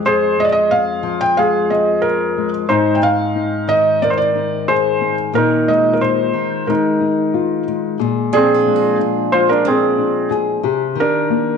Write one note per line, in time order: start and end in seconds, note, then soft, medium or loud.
0.00 0.38 G#3 soft
0.00 0.71 C4 soft
0.05 2.69 F2 medium
0.05 1.34 G#4 medium
0.05 0.39 C5 medium
0.38 1.37 G#3 soft
0.38 0.46 D#5 medium
0.45 0.52 D5 medium
0.52 0.72 D#5 medium
0.71 1.69 C4 soft
0.71 1.22 F5 medium
1.03 2.65 F3 soft
1.21 1.38 G5 medium
1.37 2.37 G#3 soft
1.37 2.66 G#4 medium
1.37 1.71 F5 medium
1.70 3.01 C4 soft
1.70 2.04 D#5 medium
2.02 2.48 A#4 medium
2.37 3.02 G#3 soft
2.69 5.31 G#2 medium
2.69 3.98 D#4 medium
2.69 2.96 C5 medium
2.95 3.02 G5 medium
3.03 4.01 C4 soft
3.03 3.71 F5 medium
3.36 4.34 D#4 soft
3.68 6.32 D#3 soft
3.68 3.99 D#5 medium
4.02 5.00 C4 soft
4.02 5.32 A#4 soft
4.02 4.09 D5 medium
4.10 4.17 C5 medium
4.18 4.70 D5 medium
4.35 5.31 D#4 soft
4.68 5.36 G#4 medium
4.68 5.14 C5 medium
5.01 5.30 C4 soft
5.33 6.33 A#2 medium
5.33 5.69 A#4 medium
5.38 6.65 D#4 medium
5.68 6.66 G#3 soft
5.68 5.92 D#5 medium
5.93 6.00 A#4 soft
6.01 7.00 D#4 soft
6.01 6.69 C5 medium
6.33 8.00 D#3 soft
6.67 7.66 G#3 soft
6.67 7.97 D#4 soft
6.67 7.63 A#4 soft
7.01 7.96 D#4 soft
7.34 8.00 F4 medium
7.68 8.65 G#3 soft
7.99 10.63 A#2 medium
7.99 10.29 G#4 medium
8.32 10.60 F3 medium
8.32 10.60 D4 medium
8.32 8.95 G#4 medium
8.36 8.97 C4 medium
8.54 10.79 F4 soft
8.67 9.30 G#3 medium
8.76 10.98 G#4 soft
8.99 9.64 D4 soft
9.32 10.64 G#3 soft
9.32 9.49 F4 medium
9.32 9.48 C5 medium
9.49 9.65 D4 medium
9.49 9.66 A#4 medium
9.65 10.93 C4 soft
9.65 10.29 C4 soft
9.65 9.97 D4 soft
9.65 10.28 G#4 medium
9.98 10.60 D4 soft
10.31 10.60 G#4 medium
10.63 10.97 C3 medium
10.63 11.57 G4 medium
10.95 11.57 D#3 medium
11.00 11.57 D4 soft
11.00 11.57 A#4 medium
11.30 11.57 A#3 medium